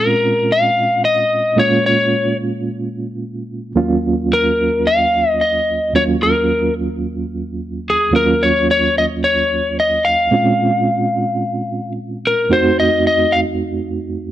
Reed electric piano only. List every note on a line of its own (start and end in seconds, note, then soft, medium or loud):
0.00 1.53 A#2 medium
0.00 1.54 G#3 medium
0.00 1.54 C4 medium
0.00 1.54 C#4 medium
0.00 1.54 F4 medium
1.56 3.71 A#2 medium
1.56 3.71 G#3 soft
1.56 3.72 A#3 medium
1.56 3.72 C#4 medium
1.56 3.72 F4 medium
3.75 5.90 D#2 medium
3.75 5.90 F#3 medium
3.75 5.90 A#3 medium
3.75 5.91 C#4 medium
3.75 5.91 F4 medium
5.94 8.08 D#2 medium
5.94 8.09 F#3 medium
5.94 8.09 A#3 medium
5.94 8.09 C#4 medium
5.94 8.09 F4 medium
8.12 10.27 D#2 medium
8.12 10.27 F#3 soft
8.12 10.27 A#3 medium
8.12 10.28 C#4 medium
8.12 10.28 F4 medium
10.31 12.46 A#2 medium
10.31 12.46 G#3 medium
10.31 12.46 C4 soft
10.31 12.46 C#4 medium
10.31 12.47 F4 medium
12.49 14.32 F2 medium
12.49 14.32 A3 medium
12.49 14.32 C4 medium
12.49 14.32 D#4 medium
12.49 14.32 F#4 medium